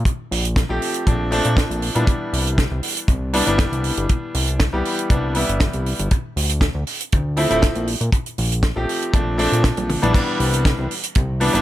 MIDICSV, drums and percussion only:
0, 0, Header, 1, 2, 480
1, 0, Start_track
1, 0, Key_signature, 0, "major"
1, 0, Tempo, 504202
1, 58, Time_signature, 4, 2, 24, 8
1, 11058, End_track
2, 0, Start_track
2, 0, Title_t, "Drums"
2, 51, Note_on_c, 9, 36, 106
2, 59, Note_on_c, 9, 42, 66
2, 146, Note_off_c, 9, 36, 0
2, 154, Note_off_c, 9, 42, 0
2, 304, Note_on_c, 9, 46, 104
2, 399, Note_off_c, 9, 46, 0
2, 428, Note_on_c, 9, 42, 60
2, 523, Note_off_c, 9, 42, 0
2, 534, Note_on_c, 9, 36, 120
2, 537, Note_on_c, 9, 38, 102
2, 545, Note_on_c, 9, 42, 69
2, 630, Note_off_c, 9, 36, 0
2, 633, Note_off_c, 9, 38, 0
2, 640, Note_off_c, 9, 42, 0
2, 779, Note_on_c, 9, 46, 99
2, 874, Note_off_c, 9, 46, 0
2, 895, Note_on_c, 9, 42, 69
2, 991, Note_off_c, 9, 42, 0
2, 1015, Note_on_c, 9, 42, 76
2, 1017, Note_on_c, 9, 36, 106
2, 1110, Note_off_c, 9, 42, 0
2, 1112, Note_off_c, 9, 36, 0
2, 1254, Note_on_c, 9, 46, 96
2, 1349, Note_off_c, 9, 46, 0
2, 1377, Note_on_c, 9, 42, 64
2, 1472, Note_off_c, 9, 42, 0
2, 1491, Note_on_c, 9, 36, 121
2, 1501, Note_on_c, 9, 42, 74
2, 1504, Note_on_c, 9, 38, 119
2, 1587, Note_off_c, 9, 36, 0
2, 1596, Note_off_c, 9, 42, 0
2, 1599, Note_off_c, 9, 38, 0
2, 1629, Note_on_c, 9, 42, 52
2, 1724, Note_off_c, 9, 42, 0
2, 1733, Note_on_c, 9, 46, 87
2, 1828, Note_off_c, 9, 46, 0
2, 1860, Note_on_c, 9, 42, 58
2, 1955, Note_off_c, 9, 42, 0
2, 1974, Note_on_c, 9, 36, 121
2, 1978, Note_on_c, 9, 42, 76
2, 2069, Note_off_c, 9, 36, 0
2, 2074, Note_off_c, 9, 42, 0
2, 2222, Note_on_c, 9, 46, 98
2, 2317, Note_off_c, 9, 46, 0
2, 2350, Note_on_c, 9, 42, 57
2, 2445, Note_off_c, 9, 42, 0
2, 2456, Note_on_c, 9, 36, 109
2, 2460, Note_on_c, 9, 42, 66
2, 2461, Note_on_c, 9, 38, 107
2, 2551, Note_off_c, 9, 36, 0
2, 2555, Note_off_c, 9, 42, 0
2, 2556, Note_off_c, 9, 38, 0
2, 2692, Note_on_c, 9, 46, 102
2, 2787, Note_off_c, 9, 46, 0
2, 2824, Note_on_c, 9, 42, 64
2, 2919, Note_off_c, 9, 42, 0
2, 2933, Note_on_c, 9, 36, 121
2, 2937, Note_on_c, 9, 42, 66
2, 3029, Note_off_c, 9, 36, 0
2, 3032, Note_off_c, 9, 42, 0
2, 3174, Note_on_c, 9, 46, 112
2, 3269, Note_off_c, 9, 46, 0
2, 3302, Note_on_c, 9, 42, 66
2, 3397, Note_off_c, 9, 42, 0
2, 3412, Note_on_c, 9, 38, 114
2, 3416, Note_on_c, 9, 36, 125
2, 3423, Note_on_c, 9, 42, 77
2, 3507, Note_off_c, 9, 38, 0
2, 3512, Note_off_c, 9, 36, 0
2, 3519, Note_off_c, 9, 42, 0
2, 3547, Note_on_c, 9, 42, 53
2, 3642, Note_off_c, 9, 42, 0
2, 3654, Note_on_c, 9, 46, 89
2, 3749, Note_off_c, 9, 46, 0
2, 3781, Note_on_c, 9, 42, 63
2, 3877, Note_off_c, 9, 42, 0
2, 3895, Note_on_c, 9, 42, 73
2, 3900, Note_on_c, 9, 36, 103
2, 3990, Note_off_c, 9, 42, 0
2, 3995, Note_off_c, 9, 36, 0
2, 4136, Note_on_c, 9, 46, 99
2, 4231, Note_off_c, 9, 46, 0
2, 4261, Note_on_c, 9, 42, 63
2, 4356, Note_off_c, 9, 42, 0
2, 4375, Note_on_c, 9, 38, 116
2, 4377, Note_on_c, 9, 42, 69
2, 4379, Note_on_c, 9, 36, 114
2, 4470, Note_off_c, 9, 38, 0
2, 4472, Note_off_c, 9, 42, 0
2, 4474, Note_off_c, 9, 36, 0
2, 4619, Note_on_c, 9, 46, 89
2, 4714, Note_off_c, 9, 46, 0
2, 4747, Note_on_c, 9, 42, 66
2, 4842, Note_off_c, 9, 42, 0
2, 4856, Note_on_c, 9, 36, 114
2, 4857, Note_on_c, 9, 42, 69
2, 4951, Note_off_c, 9, 36, 0
2, 4952, Note_off_c, 9, 42, 0
2, 5090, Note_on_c, 9, 46, 102
2, 5185, Note_off_c, 9, 46, 0
2, 5226, Note_on_c, 9, 42, 60
2, 5322, Note_off_c, 9, 42, 0
2, 5332, Note_on_c, 9, 38, 99
2, 5336, Note_on_c, 9, 36, 108
2, 5340, Note_on_c, 9, 42, 75
2, 5427, Note_off_c, 9, 38, 0
2, 5431, Note_off_c, 9, 36, 0
2, 5435, Note_off_c, 9, 42, 0
2, 5456, Note_on_c, 9, 42, 49
2, 5552, Note_off_c, 9, 42, 0
2, 5580, Note_on_c, 9, 46, 87
2, 5675, Note_off_c, 9, 46, 0
2, 5704, Note_on_c, 9, 42, 63
2, 5800, Note_off_c, 9, 42, 0
2, 5815, Note_on_c, 9, 42, 69
2, 5820, Note_on_c, 9, 36, 115
2, 5910, Note_off_c, 9, 42, 0
2, 5915, Note_off_c, 9, 36, 0
2, 6061, Note_on_c, 9, 46, 103
2, 6157, Note_off_c, 9, 46, 0
2, 6182, Note_on_c, 9, 42, 72
2, 6277, Note_off_c, 9, 42, 0
2, 6292, Note_on_c, 9, 36, 103
2, 6294, Note_on_c, 9, 42, 77
2, 6296, Note_on_c, 9, 38, 103
2, 6387, Note_off_c, 9, 36, 0
2, 6389, Note_off_c, 9, 42, 0
2, 6391, Note_off_c, 9, 38, 0
2, 6538, Note_on_c, 9, 46, 97
2, 6633, Note_off_c, 9, 46, 0
2, 6668, Note_on_c, 9, 42, 61
2, 6764, Note_off_c, 9, 42, 0
2, 6779, Note_on_c, 9, 42, 68
2, 6787, Note_on_c, 9, 36, 110
2, 6875, Note_off_c, 9, 42, 0
2, 6882, Note_off_c, 9, 36, 0
2, 7014, Note_on_c, 9, 46, 100
2, 7110, Note_off_c, 9, 46, 0
2, 7144, Note_on_c, 9, 42, 70
2, 7239, Note_off_c, 9, 42, 0
2, 7257, Note_on_c, 9, 38, 112
2, 7261, Note_on_c, 9, 36, 108
2, 7267, Note_on_c, 9, 42, 78
2, 7352, Note_off_c, 9, 38, 0
2, 7356, Note_off_c, 9, 36, 0
2, 7362, Note_off_c, 9, 42, 0
2, 7380, Note_on_c, 9, 42, 46
2, 7475, Note_off_c, 9, 42, 0
2, 7496, Note_on_c, 9, 46, 96
2, 7592, Note_off_c, 9, 46, 0
2, 7624, Note_on_c, 9, 42, 65
2, 7720, Note_off_c, 9, 42, 0
2, 7734, Note_on_c, 9, 36, 109
2, 7736, Note_on_c, 9, 42, 80
2, 7830, Note_off_c, 9, 36, 0
2, 7832, Note_off_c, 9, 42, 0
2, 7863, Note_on_c, 9, 42, 55
2, 7958, Note_off_c, 9, 42, 0
2, 7977, Note_on_c, 9, 46, 91
2, 8072, Note_off_c, 9, 46, 0
2, 8109, Note_on_c, 9, 42, 63
2, 8204, Note_off_c, 9, 42, 0
2, 8213, Note_on_c, 9, 38, 115
2, 8214, Note_on_c, 9, 36, 106
2, 8214, Note_on_c, 9, 42, 75
2, 8309, Note_off_c, 9, 36, 0
2, 8309, Note_off_c, 9, 38, 0
2, 8309, Note_off_c, 9, 42, 0
2, 8463, Note_on_c, 9, 46, 88
2, 8558, Note_off_c, 9, 46, 0
2, 8591, Note_on_c, 9, 42, 70
2, 8686, Note_off_c, 9, 42, 0
2, 8697, Note_on_c, 9, 36, 117
2, 8701, Note_on_c, 9, 42, 80
2, 8792, Note_off_c, 9, 36, 0
2, 8796, Note_off_c, 9, 42, 0
2, 8938, Note_on_c, 9, 46, 90
2, 9033, Note_off_c, 9, 46, 0
2, 9074, Note_on_c, 9, 42, 69
2, 9170, Note_off_c, 9, 42, 0
2, 9176, Note_on_c, 9, 38, 114
2, 9178, Note_on_c, 9, 36, 108
2, 9182, Note_on_c, 9, 42, 80
2, 9272, Note_off_c, 9, 38, 0
2, 9273, Note_off_c, 9, 36, 0
2, 9277, Note_off_c, 9, 42, 0
2, 9301, Note_on_c, 9, 42, 57
2, 9309, Note_on_c, 9, 48, 53
2, 9396, Note_off_c, 9, 42, 0
2, 9404, Note_off_c, 9, 48, 0
2, 9421, Note_on_c, 9, 47, 77
2, 9422, Note_on_c, 9, 46, 89
2, 9516, Note_off_c, 9, 47, 0
2, 9517, Note_off_c, 9, 46, 0
2, 9550, Note_on_c, 9, 45, 83
2, 9552, Note_on_c, 9, 42, 69
2, 9645, Note_off_c, 9, 45, 0
2, 9647, Note_off_c, 9, 42, 0
2, 9656, Note_on_c, 9, 42, 77
2, 9657, Note_on_c, 9, 36, 125
2, 9666, Note_on_c, 9, 49, 110
2, 9751, Note_off_c, 9, 42, 0
2, 9753, Note_off_c, 9, 36, 0
2, 9761, Note_off_c, 9, 49, 0
2, 9901, Note_on_c, 9, 46, 99
2, 9996, Note_off_c, 9, 46, 0
2, 10028, Note_on_c, 9, 42, 66
2, 10124, Note_off_c, 9, 42, 0
2, 10138, Note_on_c, 9, 42, 74
2, 10140, Note_on_c, 9, 36, 116
2, 10145, Note_on_c, 9, 38, 112
2, 10233, Note_off_c, 9, 42, 0
2, 10235, Note_off_c, 9, 36, 0
2, 10241, Note_off_c, 9, 38, 0
2, 10384, Note_on_c, 9, 46, 93
2, 10480, Note_off_c, 9, 46, 0
2, 10504, Note_on_c, 9, 42, 68
2, 10600, Note_off_c, 9, 42, 0
2, 10614, Note_on_c, 9, 42, 80
2, 10623, Note_on_c, 9, 36, 111
2, 10709, Note_off_c, 9, 42, 0
2, 10718, Note_off_c, 9, 36, 0
2, 10859, Note_on_c, 9, 46, 98
2, 10954, Note_off_c, 9, 46, 0
2, 10994, Note_on_c, 9, 42, 66
2, 11058, Note_off_c, 9, 42, 0
2, 11058, End_track
0, 0, End_of_file